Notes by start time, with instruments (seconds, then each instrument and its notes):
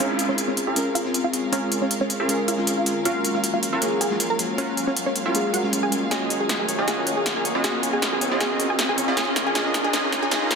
0.00 synth keys G#3 C4 C#4 F4, string section G#3 C#4 A#4 F5, synth pluck C#4 C#5, supersaw synth C#4 F4 G#4 A#4 F5, riser
0.19 closed hi-hat
0.28 synth keys G#3 C4 C#4 F4, synth pluck C#4 C#5
0.38 closed hi-hat
0.47 synth keys G#3 C4 C#4 F4, synth pluck C#4 C#5
0.57 closed hi-hat
0.67 supersaw synth C#4 F4 G#4 A#4 F5
0.75 synth keys G#3 C4 C#4 A#4, closed hi-hat
0.95 synth pluck F4 F5, closed hi-hat
1.04 synth keys G#3 C4 C#4 F4
1.14 closed hi-hat
1.24 synth pluck F4 F5
1.32 synth keys G#3 C4 C#4 F4, closed hi-hat
1.52 synth keys G#3 C4 C#4 F4, synth pluck C#4 C#5, supersaw synth C#4 F4 G#4 A#4 F5, closed hi-hat
1.72 closed hi-hat
1.81 synth keys G#3 C4 C#4 F4, synth pluck C#4 C#5
1.91 closed hi-hat
2.00 synth keys G#3 C4 C#4 F4, synth pluck C#4 C#5
2.10 closed hi-hat
2.20 supersaw synth C#4 F4 G#4 A#4 F5
2.28 synth keys G#3 C4 C#4 A#4, closed hi-hat
2.48 synth pluck F4 F5, closed hi-hat
2.57 synth keys G#3 C4 C#4 F4
2.67 closed hi-hat
2.77 synth pluck F4 F5
2.85 synth keys G#3 C4 C#4 F4, closed hi-hat
3.04 string section F#3, synth keys G#3 A#3 C#4 F4, supersaw synth C#4 F4 F#4 A#4 F5, synth pluck F4 F5, closed hi-hat
3.25 closed hi-hat
3.34 synth keys G#3 A#3 C#4 F4, synth pluck F4 F5
3.44 closed hi-hat
3.53 synth keys G#3 A#3 C#4 F4, synth pluck F4 F5
3.63 closed hi-hat
3.73 supersaw synth C#4 F4 F#4 A#4 F5
3.81 synth keys G#3 A#3 C#4 G#4, closed hi-hat
4.01 synth pluck G#4 G#5, closed hi-hat
4.10 synth keys G#3 A#3 C#4 F4
4.20 closed hi-hat
4.30 synth pluck A#4 A#5
4.38 synth keys G#3 A#3 C#4 F4, closed hi-hat
4.58 synth pluck C#4 C#5, supersaw synth C#4 F4 F#4 A#4 F5, synth keys F4, closed hi-hat
4.77 closed hi-hat
4.86 synth keys G#3 A#3 C#4 F4, synth pluck C#4 C#5
4.97 closed hi-hat
5.06 synth keys G#3 A#3 C#4 F4, synth pluck C#4 C#5
5.16 closed hi-hat
5.26 supersaw synth C#4 F4 F#4 A#4 F5
5.34 synth keys G#3 A#3 C#4 G#4, closed hi-hat
5.54 synth pluck F#4 F#5, closed hi-hat
5.63 synth keys G#3 A#3 C#4 F4
5.73 closed hi-hat
5.83 synth pluck G#4 G#5
5.91 synth keys G#3 A#3 C#4 F4, closed hi-hat
6.11 string section D#3 C#4 G#4, supersaw synth C#4 F4 F#4 G#4 D#5, harp G#4, synth pluck G#4 G#5, snare, closed hi-hat
6.21 harp A#4
6.30 harp C#5, closed hi-hat
6.40 synth pluck G#4 G#5, harp D#5
6.49 harp G#4, snare, closed hi-hat
6.59 synth pluck G#4 G#5, harp A#4
6.68 harp C#5, closed hi-hat
6.78 supersaw synth C#4 F4 F#4 G#4 D#5, harp D#5
6.88 supersaw synth C#4 F4 F#4 G#4 D#5, synth pluck G#4 G#5, snare, closed hi-hat
6.98 harp A#4
7.07 harp C#5, closed hi-hat
7.17 synth pluck G#4 G#5, harp D#5
7.26 harp G#4, snare, closed hi-hat
7.36 synth pluck G#4 G#5, harp A#4
7.45 harp C#5, closed hi-hat
7.55 supersaw synth C#4 F4 F#4 G#4 D#5, harp D#5
7.64 supersaw synth C#4 F4 F#4 G#4 D#5, synth pluck G#4 G#5, snare, closed hi-hat
7.74 harp A#4
7.83 harp C#5, closed hi-hat
7.93 synth pluck G#4 G#5, harp D#5
8.02 harp G#4, snare, closed hi-hat
8.12 synth pluck G#4 G#5, harp A#4
8.21 harp C#5, closed hi-hat
8.31 supersaw synth C#4 F4 F#4 G#4 D#5, harp D#5
8.40 supersaw synth C#4 F4 F#4 G#4 D#5, synth pluck G#4 G#5, snare, closed hi-hat
8.51 harp A#4
8.59 harp C#5, closed hi-hat
8.70 synth pluck G#4 G#5, harp D#5
8.79 harp G#4, snare, closed hi-hat
8.89 synth pluck G#4 G#5, harp A#4
8.98 harp C#5, closed hi-hat
9.08 supersaw synth C#4 F4 F#4 G#4 D#5, harp D#5
9.17 supersaw synth C#4 F4 G#4 D#5, string section F4 C6, synth pluck G#4 G#5, snare, closed hi-hat
9.27 harp A#4
9.36 harp C#5, snare, closed hi-hat
9.46 synth pluck G#4 G#5, harp D#5
9.55 supersaw synth C#4 F4 G#4 D#5, harp G#4, synth pluck G#4 G#5, snare, closed hi-hat
9.65 harp A#4
9.74 harp C#5, snare, closed hi-hat
9.84 synth pluck G#4 G#5, harp D#5
9.93 supersaw synth C#4 F4 G#4 D#5, harp G#4, synth pluck G#4 G#5, snare, closed hi-hat
10.03 harp A#4
10.12 harp C#5, snare, closed hi-hat
10.22 synth pluck G#4 G#5, harp D#5
10.31 supersaw synth C#4 F4 G#4 D#5, synth pluck G#4 G#5, harp G#4, snare, closed hi-hat
10.42 harp A#4
10.51 harp C#5, snare, closed hi-hat